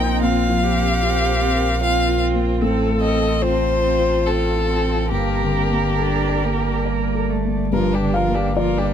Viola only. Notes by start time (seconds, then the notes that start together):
Already playing: D#4
0.23 F4
0.64 G4
1.82 F4
2.62 A4
3.43 F4
5.12 A#4
7.73 F4
7.94 D4
8.14 F4
8.35 D4
8.56 F4
8.78 D4